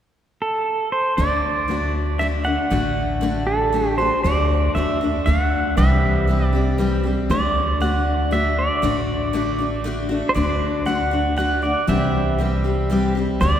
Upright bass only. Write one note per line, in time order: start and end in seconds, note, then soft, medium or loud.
1.18 2.56 D2 medium
2.71 4.09 A1 medium
4.24 4.70 D2 medium
4.76 5.19 E2 medium
5.27 5.70 D2 medium
5.77 7.15 C2 medium
7.30 8.67 D2 medium
8.83 10.20 A1 medium
10.36 11.73 D2 medium
11.88 13.25 C2 medium
13.41 13.60 D2 medium